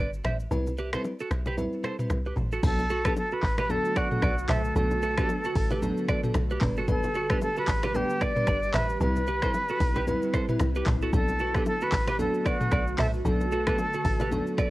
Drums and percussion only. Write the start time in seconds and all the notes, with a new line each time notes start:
0.13 shaker
0.24 finger snap, cross-stick, mid tom, high bongo, low conga, shaker
0.40 shaker
0.51 low conga, shaker
0.66 low bongo, shaker
0.77 shaker
0.93 finger snap, cross-stick, low bongo, shaker
1.04 high bongo, shaker
1.19 shaker
1.31 finger snap, cross-stick, high bongo, shaker
1.46 low bongo, shaker
1.58 low conga, shaker
1.73 shaker
1.84 finger snap, cross-stick, low bongo, shaker
1.99 mid tom, shaker
2.10 finger snap, cross-stick, high bongo, shaker
2.26 shaker
2.36 mid tom, high bongo, low conga, shaker
2.52 shaker
2.63 kick, crash, low conga, shaker
2.79 low bongo, shaker
2.90 shaker
3.05 finger snap, kick, cross-stick, low bongo, shaker
3.17 high bongo, shaker
3.31 shaker
3.43 kick, clap, open hi-hat, high bongo, shaker
3.58 finger snap, cross-stick, low bongo, shaker
3.70 low conga, shaker
3.85 shaker
3.96 finger snap, kick, cross-stick, low bongo, shaker
4.11 mid tom, shaker
4.22 finger snap, kick, cross-stick, high bongo, shaker
4.38 shaker
4.48 finger snap, cross-stick, clap, mid tom, open hi-hat, high bongo, low conga, shaker
4.64 shaker
4.76 low conga, shaker
4.91 low bongo, shaker
5.02 shaker
5.17 finger snap, kick, cross-stick, low bongo, shaker
5.29 high bongo, shaker
5.44 shaker
5.55 kick, open hi-hat, high bongo, shaker
5.71 low bongo, shaker
5.82 low conga, shaker
5.97 shaker
6.08 finger snap, kick, cross-stick, low bongo, shaker
6.24 mid tom, shaker
6.34 finger snap, cross-stick, high bongo, shaker
6.50 shaker
6.61 kick, clap, mid tom, open hi-hat, high bongo, low conga, shaker
6.77 shaker
6.88 kick, low conga, shaker
7.03 low bongo, shaker
7.14 shaker
7.30 finger snap, kick, cross-stick, low bongo, shaker
7.41 high bongo, shaker
7.56 shaker
7.68 kick, clap, open hi-hat, high bongo, shaker
7.83 finger snap, cross-stick, low bongo, shaker
7.95 low conga, shaker
8.10 shaker
8.21 finger snap, kick, cross-stick, low bongo, shaker
8.36 mid tom, shaker
8.47 finger snap, kick, cross-stick, high bongo, shaker
8.63 shaker
8.73 finger snap, cross-stick, clap, mid tom, open hi-hat, high bongo, low conga, shaker
8.89 shaker
9.01 low conga, shaker
9.16 low bongo, shaker
9.27 shaker
9.42 finger snap, kick, cross-stick, low bongo, shaker
9.54 high bongo, shaker
9.68 shaker
9.80 kick, open hi-hat, high bongo, shaker
9.95 low bongo, shaker
10.07 low conga, shaker
10.22 shaker
10.33 finger snap, kick, cross-stick, low bongo, shaker
10.49 mid tom, shaker
10.59 finger snap, cross-stick, high bongo, shaker
10.75 shaker
10.86 kick, clap, mid tom, open hi-hat, high bongo, low conga, shaker
11.01 shaker
11.13 kick, low conga, shaker
11.28 low bongo, shaker
11.39 shaker
11.54 finger snap, kick, cross-stick, low bongo, shaker
11.66 high bongo, shaker
11.81 shaker
11.92 kick, clap, open hi-hat, high bongo, shaker
12.08 finger snap, cross-stick, low bongo, shaker
12.20 low conga, shaker
12.34 shaker
12.46 finger snap, kick, cross-stick, low bongo, shaker
12.61 mid tom, shaker
12.72 finger snap, kick, cross-stick, high bongo, shaker
12.88 shaker
12.98 finger snap, cross-stick, clap, mid tom, open hi-hat, high bongo, low conga, shaker
13.14 shaker
13.25 low conga, shaker
13.41 low bongo, shaker
13.52 shaker
13.67 finger snap, kick, cross-stick, low bongo, shaker
13.78 high bongo, shaker
13.93 shaker
14.05 kick, open hi-hat, high bongo, shaker
14.20 low bongo, shaker
14.32 low conga, shaker
14.47 shaker
14.58 finger snap, kick, cross-stick, low bongo, shaker